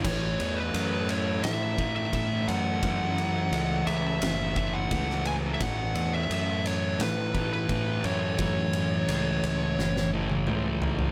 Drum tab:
CC |x---------------|----------------|----------------|----------------|
RD |x-x-x-x-x-x-x-x-|x-x-x-x-x-x-x-x-|x-x-x-x-x-x-x-x-|x-x-x-x---------|
SD |--------o-------|--------o----o--|--------o-------|--------oo------|
T1 |----------------|----------------|----------------|-----------o----|
T2 |----------------|----------------|----------------|------------o---|
FT |----------------|----------------|----------------|--------------oo|
BD |o---------o-o---|o---------o-o---|o---------o-o---|o---------------|